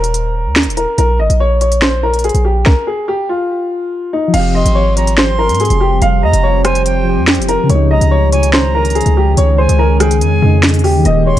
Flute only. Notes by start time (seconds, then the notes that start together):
4.55 C6
4.97 A#5
5.18 C6
6.23 A#5
6.65 G#5
6.86 G5
7.91 A#5
8.32 G#5
8.53 A#5
9.58 G#5
10.00 G5
10.21 G#5
11.26 C6